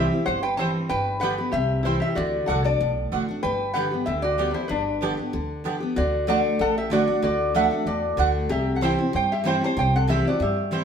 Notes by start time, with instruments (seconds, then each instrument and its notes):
Already playing: steel-string acoustic guitar C3 E3 G3 C4 E4, resonator guitar played with a steel bar G4 E5
0.12 steel-string acoustic guitar C4 E4
0.26 upright bass G1, steel-string acoustic guitar G2, resonator guitar played with a steel bar C5 F#5
0.43 resonator guitar played with a steel bar B4 G5
0.57 steel-string acoustic guitar E3 G3 C4 E4, mandolin C4 E4 C5 G5, resonator guitar played with a steel bar C5 A5
0.89 upright bass G1, steel-string acoustic guitar G2, resonator guitar played with a steel bar B4 G5
1.20 steel-string acoustic guitar D3 G3 B3 G4, mandolin B3 G4 D5 G5, resonator guitar played with a steel bar B4 F#5
1.38 steel-string acoustic guitar B3 G4
1.52 upright bass C2, steel-string acoustic guitar C3, resonator guitar played with a steel bar G4 E5
1.83 steel-string acoustic guitar E3 G3 C4, mandolin C4 E4 C5 G5, resonator guitar played with a steel bar E4 C5
1.87 steel-string acoustic guitar E4
2.00 resonator guitar played with a steel bar G4 E5
2.15 upright bass D2, steel-string acoustic guitar D3, resonator guitar played with a steel bar F#4 D5
2.46 upright bass C2, steel-string acoustic guitar D3 A3 D4, mandolin A3 F#4 D5 F#5, resonator guitar played with a steel bar A4 F#5
2.51 steel-string acoustic guitar F#4
2.64 steel-string acoustic guitar D4 F#4, resonator guitar played with a steel bar D5 A5
2.81 upright bass B1, steel-string acoustic guitar A2
3.12 upright bass A1, steel-string acoustic guitar D3 A3 D4 F#4, mandolin A3 F#4 D5 F#5
3.29 steel-string acoustic guitar D4 F#4
3.43 upright bass G1, steel-string acoustic guitar G2, resonator guitar played with a steel bar B4 G5
3.74 steel-string acoustic guitar D3 G3 B3 G4, mandolin B3 G4 D5 G5, resonator guitar played with a steel bar B4 F#5
3.91 steel-string acoustic guitar B3 G4
4.06 upright bass D2, steel-string acoustic guitar D3, resonator guitar played with a steel bar G4 E5
4.22 resonator guitar played with a steel bar F#4 D5
4.38 steel-string acoustic guitar D3 G3 B3 G4, mandolin B3 G4 D5 G5
4.51 resonator guitar played with a steel bar D4 E4 B4 C5, steel-string acoustic guitar G4
4.57 steel-string acoustic guitar B3
4.68 upright bass G1, steel-string acoustic guitar G2, resonator guitar played with a steel bar D4 B4
5.01 steel-string acoustic guitar D3 G3 B3 G4, mandolin B3 G4 D5 A5
5.17 steel-string acoustic guitar B3 G4
5.33 upright bass D2, steel-string acoustic guitar D3
5.64 steel-string acoustic guitar D3 G3 B3 G4, mandolin B3 G4 D5 A5
5.80 steel-string acoustic guitar B3 G4
5.96 upright bass D2, steel-string acoustic guitar D3, resonator guitar played with a steel bar F#4 D5
6.27 steel-string acoustic guitar D3 A3 D4 F#4, mandolin A3 F#4 D5 F#5, resonator guitar played with a steel bar D5 A5
6.59 upright bass A1, steel-string acoustic guitar A2, resonator guitar played with a steel bar A4 F#5
6.78 resonator guitar played with a steel bar G4 E5
6.90 steel-string acoustic guitar D3 A3 D4 F#4, mandolin A3 F#4 D5 F#5, resonator guitar played with a steel bar F#4 D5
7.07 steel-string acoustic guitar D4 F#4
7.22 upright bass D2, steel-string acoustic guitar D3, resonator guitar played with a steel bar F#4 D5
7.54 steel-string acoustic guitar D3 A3 D4 F#4, mandolin A3 F#4 D5 F#5, resonator guitar played with a steel bar A4 E5
7.71 steel-string acoustic guitar D4 F#4
7.86 upright bass E2, steel-string acoustic guitar A2, resonator guitar played with a steel bar F#4 D5
8.17 upright bass D2, steel-string acoustic guitar D3 A3 D4 F#4, mandolin A3 F#4 D5 F#5
8.49 upright bass C2, steel-string acoustic guitar C3, resonator guitar played with a steel bar G4 E5
8.75 resonator guitar played with a steel bar A4 F#5
8.81 steel-string acoustic guitar E3 G3 C4 E4, mandolin C4 E4 C5 G5, resonator guitar played with a steel bar C5 G5
8.98 steel-string acoustic guitar C4 E4
9.13 steel-string acoustic guitar G2, upright bass G2, resonator guitar played with a steel bar C5 G5
9.32 resonator guitar played with a steel bar G4 E5
9.44 steel-string acoustic guitar E3 G3 C4 E4, mandolin C4 E4 C5 G5, resonator guitar played with a steel bar C5 G5
9.61 steel-string acoustic guitar C4 E4, resonator guitar played with a steel bar A5
9.65 resonator guitar played with a steel bar C5
9.77 upright bass C2, steel-string acoustic guitar C3, resonator guitar played with a steel bar C5 G5
9.96 resonator guitar played with a steel bar A4 F#5
10.07 steel-string acoustic guitar E3 G3 C4 E4, mandolin C4 E4 C5 G5, resonator guitar played with a steel bar E5
10.13 resonator guitar played with a steel bar G4
10.25 steel-string acoustic guitar C4 E4, resonator guitar played with a steel bar D5
10.29 resonator guitar played with a steel bar F#4
10.40 steel-string acoustic guitar G2, upright bass G2, resonator guitar played with a steel bar G4 E5
10.71 steel-string acoustic guitar E3 G3 C4 E4, mandolin C4 E4 C5 G5